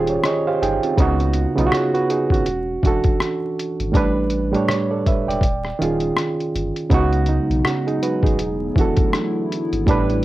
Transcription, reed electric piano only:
Already playing: D#3 C#4 F4 G4 G#4 C5
0.10 C#5
0.25 G#4 C#5 D#5
0.47 G4 C5 F5
0.62 D#4 G#4 G5
0.83 C4 F4
0.97 C#3 B3 D#4
1.02 F#4
1.55 C#3 B3 D#4
1.60 F4
1.67 F#4
1.74 G#4 C#5
1.94 F#4 B4
2.10 D#4 G#4
2.32 C#4 F#4
2.83 E3 D4 F#4
2.87 A4
3.92 A2 G3 D4
3.96 B4
4.51 A2 G3 D4
4.56 C#5
4.69 G4 C#5
4.91 A4 D5
5.07 B4 E5
5.28 D5 G5
5.79 D#3 C#4 F4
5.84 G#4
6.90 C#3 B3 D#4
6.94 F#4
7.29 G#3 D#4
7.65 C#4 F#4
7.87 D#4 G#4
8.03 F#4 B4
8.23 D#4 G#4
8.76 E3 D4 F#4
8.81 A4
9.86 A2 G3 D4
9.91 B4

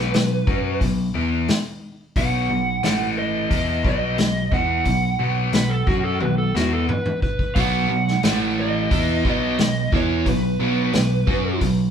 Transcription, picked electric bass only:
Already playing: B1
0.15 B1
0.47 F#2
0.81 B1
1.15 E2
2.16 B1
2.50 B1
2.84 A1
3.51 E2
3.85 B1
4.18 B1
4.52 E2
4.86 B1
5.19 B1
5.53 B1
5.87 F#2
6.20 B1
6.55 E2
7.56 B1
7.89 B1
8.24 A1
8.91 E2
9.25 B1
9.60 B1
9.93 E2
10.26 B1
10.60 B1
10.94 B1
11.28 F#2
11.62 B1

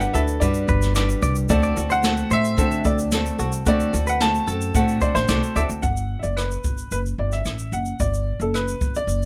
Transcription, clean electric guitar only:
0.15 A4
0.69 B4
0.96 D5
1.23 D5
1.63 D5
1.90 C5
2.31 C5
2.85 A4
3.40 F#4
3.67 F#4
4.07 B4
4.48 A4
5.02 C5
5.29 D5
5.56 D5

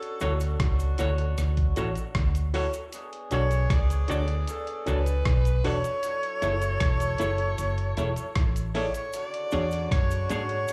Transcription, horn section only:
Already playing: C#4 D4 F#4
2.93 B3 D4 G#4
6.03 F#3 E4 A4
9.13 C#3 D3 F#4

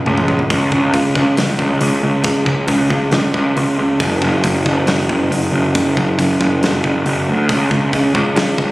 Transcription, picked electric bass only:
0.07 C#2
0.51 C#2
0.72 C#2
0.94 C#2
1.16 C#2
1.38 C#2
1.60 C#2
1.81 C#2
2.03 C#2
2.24 C#2
2.46 C#2
2.68 C#2
2.90 C#2
3.12 C#2
3.34 C#2
3.57 C#2
3.79 C#2
4.00 F#1
4.21 F#1
4.44 F#1
4.66 F#1
4.86 F#1
5.10 F#1
5.30 F#1
5.52 F#1
5.75 F#1
5.97 F#1
6.19 F#1
6.41 F#1
6.63 F#1
6.84 F#1
7.06 F#1
7.28 D2
7.49 C#2
7.71 C#2
7.93 C#2
8.14 C#2
8.35 C#2
8.59 C#2

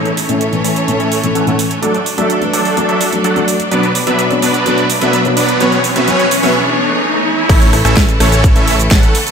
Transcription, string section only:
Already playing: E3 A3 C#4 A4 C#5
1.82 F#3 D4 A4 D5
3.72 B3 D4 B4
5.61 E3 B3 C#4 G#4 C#5
7.49 E3 A3 E4 A4

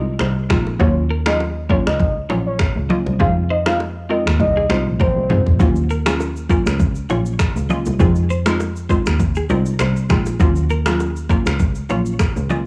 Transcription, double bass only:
Already playing: C2
0.20 C2
0.50 A#1
0.80 D#2
1.86 C#2
2.30 A#1
2.76 C#2
3.06 C2
3.20 F2
4.26 D#2
4.40 C2
4.70 C2
4.86 A#1
5.16 C2
5.46 A#1
5.60 D#2
6.66 C#2
7.10 A#1
7.56 C#2
7.86 C2
8.00 F2
9.06 D#2
9.50 C2
9.80 C2
10.10 A#1
10.40 D#2
11.46 C#2
11.90 A#1
12.36 C#2

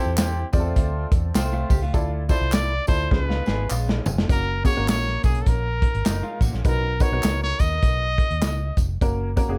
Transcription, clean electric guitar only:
1.53 A3 F4
1.70 G4
1.82 A3 F4
3.12 F3 C#4
3.29 G#3 F4
3.47 B3 G#4
3.70 G#3 F4
3.88 F3 C#4
6.06 F#3 D#4
6.23 G#3 F4
6.42 A#3 F#4
6.53 F3 C#4

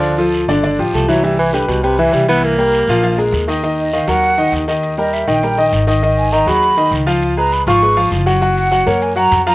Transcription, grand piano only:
Already playing: D3 D4 D5
0.18 F3 F4 A4
0.48 D3 D4 D5
0.63 D3 D4 D5
0.79 F3 F4 G4
1.08 E3 E4 E5
1.24 E3 E4 E5
1.53 G3 G4 B4
1.83 G3 G4 B4
1.99 E3 E4 E5
2.28 E3 E4 E5
2.58 G3 G4 A#4
2.89 F3 F4 F5
3.03 F3 F4 F5
3.18 G#3 G#4 A#4
3.48 D#3 D#4 D#5
3.63 D#3 D#4 D#5
3.93 D#3 D#4 D#5
4.08 F#3 F#4 A#4
4.38 D#3 D#4 D#5
4.68 D#3 D#4 D#5
4.98 G3 G4 A#4
5.27 D#3 D#4 D#5
5.43 G3 G4 A#4
5.58 D#3 D#4 D#5
5.87 D#3 D#4 D#5
6.03 D#3 D#4 D#5
6.32 D#3 D#4 D#5
6.47 F#3 F#4 G#4
6.77 D#3 D#4 D#5
7.06 F3 F4 F5
7.37 G#3 G#4 B4
7.67 F3 F4 F5
7.82 G#3 G#4 B4
7.96 F3 F4 F5
8.26 F#3 F#4 F#5
8.41 F#3 F#4 F#5
8.71 F#3 F#4 F#5
8.86 A#3 A#4 C#5
9.16 F#3 F#4 F#5
9.46 F3 F4 F5

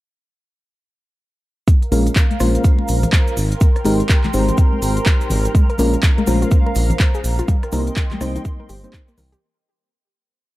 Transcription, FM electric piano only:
1.92 G#3 A#3 C#4 F4 A#4
2.40 G#3 A#3 C#4 F4 C5
3.85 G#3 C4 D#4 G4 A#4
4.33 G#3 C4 D#4 G4 C5
5.79 G#3 A#3 C#4 F4 A#4
6.27 G#3 A#3 C#4 F4 C5
7.72 G3 A#3 C4 D#4 A#4
8.21 G3 A#3 C4 D#4 C5
8.84 G3 A#3 C4 D#4 C5

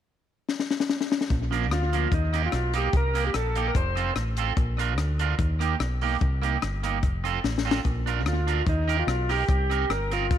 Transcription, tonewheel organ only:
1.72 F4
2.14 D#4
2.46 F4
2.78 G4
2.97 A#4
3.27 G4
3.36 A4
3.68 A#4
3.76 C5
8.28 F4
8.69 D#4
8.99 F4
9.31 G4
9.90 A#4
10.13 F4

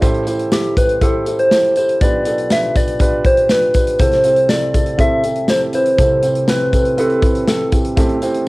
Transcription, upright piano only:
0.01 A1 A2 E4 G4 A4 C5
0.27 E4 G4 A4 C5
0.52 E4 G4 A4 C5
0.78 E4 G4 A4 C5
1.01 E4 G4 A4 C5
1.27 E4 G4 A4 C5
1.52 E4 G4 A4 C5
1.77 E4 G4 A4 C5
2.02 B1 B2 D4 F4 G4 B4
2.25 D4 F4 G4 A4
2.50 D4 F4 G4 B4
2.75 D4 F4 G4 B4
2.99 D4 F4 G4 B4
3.25 D4 F4 G4
3.49 D4 F4 G4 B4
3.75 D4 F4 G4 B4
4.00 C2 C3 C4 E4 G4 A4
4.24 C4 E4 G4 C5
4.49 C4 E4 G4 A4
4.74 C4 E4 G4 A4
4.98 C4 E4 G4 A4
5.24 C4 E4 G4 A4
5.49 C4 E4 G4 A4
5.74 C4 E4 G4 B4
5.98 C2 C3 C4 E4 G4 A4
6.23 C4 E4 G4 C5
6.48 C4 E4 G4 B4
6.72 C4 E4 G4 A4
6.98 C4 E4 G4 B4
7.22 C4 E4 G4
7.47 C4 E4 G4 A4
7.72 C4 E4 G4 A4
7.97 A1 A2 C4 E4 G4 A4
8.22 C4 E4 G4 C5

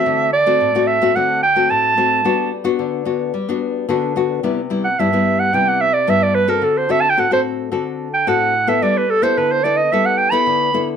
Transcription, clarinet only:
Already playing: E5
0.33 D5
0.87 E5
1.16 F#5
1.43 G5
1.70 A5
4.84 F#5
4.99 E5
5.39 F#5
5.54 G5
5.68 F#5
5.81 E5
5.94 D5
6.10 E5
6.23 D5
6.35 B4
6.49 A#4
6.64 A4
6.77 C5
6.91 E5
7.01 A5
7.10 G5
7.19 F#5
7.33 C5
8.14 G5
8.28 F#5
8.69 E5
8.82 D5
8.98 B4
9.10 A4
9.23 C5
9.38 B4
9.52 C5
9.64 D5
9.77 D#5
9.92 E5
10.06 F#5
10.17 G5
10.31 B5

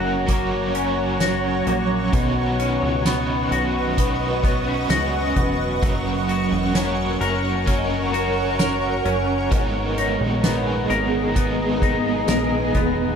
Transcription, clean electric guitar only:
Already playing: F#3 A#3 C#4 F#4 A#4
0.29 A#3
0.75 C#4
1.21 F#4
1.67 A#3
2.14 B2
2.60 C#4
3.06 B3
3.52 F#4
3.98 B3
4.44 B3
4.67 C#4
4.90 F#4
5.36 B3
5.83 F#3
6.29 F#4
6.75 C#4
7.21 A#4
7.67 C#4
8.13 F#4
8.59 A#4
9.05 C#4
9.52 G#2
9.98 D#4
10.44 B3
10.90 A#4
11.36 B3
11.82 D#4
12.29 A#4
12.75 B3

